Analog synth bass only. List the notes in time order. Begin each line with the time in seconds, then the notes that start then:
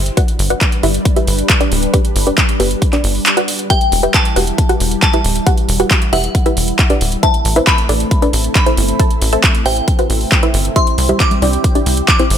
Already playing: G1
0.39 G1
0.83 G1
1.27 G1
1.72 D1
2.16 G1
2.60 G1
3.04 G1
3.92 E1
4.36 E1
4.80 E1
5.25 D1
5.69 E1
6.13 E1
6.57 E1
7.01 D1
7.45 A1
7.89 A1
8.33 A1
8.77 G1
9.22 A1
9.66 A1
10.10 A1
10.54 G1
10.98 C2
11.42 C2
11.86 C2
12.30 G1